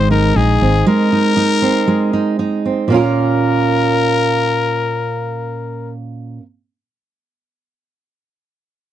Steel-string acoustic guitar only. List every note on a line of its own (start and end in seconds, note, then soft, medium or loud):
0.00 0.85 G#3 medium
0.00 0.61 C4 medium
0.11 0.35 D#4 medium
0.36 1.11 D#4 medium
0.62 1.61 C4 medium
0.86 1.86 G#3 medium
1.12 1.35 D#4 medium
1.37 2.12 D#4 medium
1.62 2.64 C4 medium
1.87 2.90 G#3 medium
2.13 2.38 D#4 medium
2.39 2.92 D#4 medium
2.65 2.94 C4 medium
2.88 6.38 A#2 medium
2.88 6.40 A#3 medium
2.92 6.42 C#4 medium
2.92 6.44 F4 medium
2.92 6.45 A#4 loud